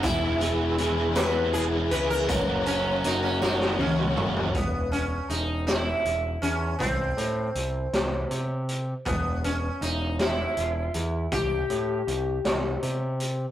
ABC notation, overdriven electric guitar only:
X:1
M:6/8
L:1/8
Q:3/8=53
K:C#dor
V:1 name="Overdriven electric guitar"
[E,B,EG] [E,B,EG] [E,B,EG] [E,B,EG] [E,B,EG] [E,B,EG] | [F,A,CF] [F,A,CF] [F,A,CF] [F,A,CF] [F,A,CF] [F,A,CF] | z6 | z6 |
z6 | z6 |]